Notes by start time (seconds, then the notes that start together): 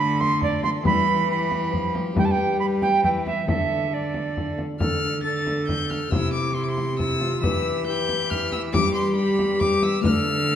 Already playing: D3 A3 F4 A4 D5 B5
0.20 C6, frame drum
0.41 A4 D5, frame drum
0.63 C6, frame drum
0.82 E3 G3 E4 G4 B4 B5, frame drum
1.26 E4 G4 B4
1.30 B5
1.51 frame drum
1.72 F3, frame drum
1.95 frame drum
2.13 G3 D4 B4, frame drum
2.18 G5
2.25 A5
2.31 G5
2.59 B4 B5
2.82 G5, frame drum
3.03 E3 B4 G5, frame drum
3.26 E5, frame drum
3.46 D3 D4 A4 E5, frame drum
3.89 D4 A4
3.94 D5
4.14 frame drum
4.37 frame drum
4.58 frame drum
4.79 D3 D4 A4 F6, frame drum
5.23 D4 A4 A6
5.47 frame drum
5.68 G6, frame drum
5.90 F6, frame drum
6.10 C3 E4 F4 C5 E6, frame drum
6.16 E4
6.33 D6
6.54 E4 C5 C6
6.64 D6
6.69 C6
6.78 frame drum
6.98 E4 F4 C5 E6, frame drum
7.03 E4
7.21 F4, frame drum
7.41 E3 E4 G4 B4 E6, frame drum
7.84 E4 G4 B4 G6
8.09 frame drum
8.30 F6, frame drum
8.52 E6, frame drum
8.72 G3 D4 G4 B4 D6, frame drum
8.95 C6
9.15 D4 G4 B4 B5
9.39 frame drum
9.60 G4 D6, frame drum
9.83 E6, frame drum
10.01 D3 A3 F4 B4 D5 F6, frame drum
10.09 A4